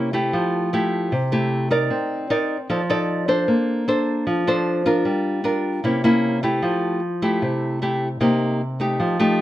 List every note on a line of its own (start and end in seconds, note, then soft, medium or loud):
0.00 0.31 C3 medium
0.00 0.10 A#3 medium
0.00 0.10 C#4 medium
0.00 0.11 E4 medium
0.13 0.69 A3 medium
0.13 0.69 E4 medium
0.13 0.69 G4 medium
0.33 1.09 F3 medium
0.73 1.11 A3 medium
0.73 1.12 E4 medium
0.73 1.12 G4 medium
1.12 1.88 C3 medium
1.32 1.68 A3 medium
1.32 1.68 E4 medium
1.32 1.68 G4 medium
1.71 2.26 D#4 medium
1.71 2.26 A#4 medium
1.71 2.27 D5 medium
1.90 2.67 C4 medium
2.30 2.56 D#4 medium
2.30 2.56 A#4 medium
2.30 2.56 D5 medium
2.70 3.46 F3 medium
2.70 2.81 D#4 medium
2.70 2.81 A4 medium
2.70 2.81 D5 medium
2.90 3.25 D#4 medium
2.90 3.25 A4 medium
2.90 3.25 D5 medium
3.28 3.84 D4 medium
3.28 3.84 A4 medium
3.28 3.84 C5 medium
3.48 4.24 A#3 medium
3.88 4.43 D4 medium
3.88 4.43 A4 medium
3.88 4.43 C5 medium
4.27 5.03 F3 medium
4.47 4.83 D4 medium
4.47 4.83 A4 medium
4.47 4.83 C5 medium
4.86 5.41 D4 medium
4.86 5.42 F4 medium
4.86 5.42 A#4 medium
5.05 5.82 G3 medium
5.44 5.82 D4 medium
5.44 5.82 F4 medium
5.44 5.82 A#4 medium
5.84 6.61 C3 medium
5.84 6.00 A#3 soft
5.84 6.01 C#4 medium
5.84 6.01 E4 medium
6.04 6.40 A#3 medium
6.04 6.40 C#4 medium
6.04 6.40 E4 medium
6.43 6.99 A3 medium
6.43 6.99 E4 medium
6.43 6.99 G4 medium
6.62 7.40 F3 medium
7.22 7.78 A3 medium
7.22 7.78 E4 medium
7.22 7.79 G4 medium
7.42 8.19 C3 medium
7.82 8.07 A3 medium
7.82 8.07 E4 soft
7.82 8.07 G4 medium
8.20 8.98 C3 medium
8.20 8.60 A#3 medium
8.20 8.60 D#4 medium
8.20 8.60 G4 medium
8.80 9.16 A3 medium
8.80 9.17 D#4 medium
8.80 9.17 G4 medium
9.00 9.41 F3 medium
9.20 9.41 A3 medium
9.20 9.41 D#4 medium
9.20 9.41 G4 medium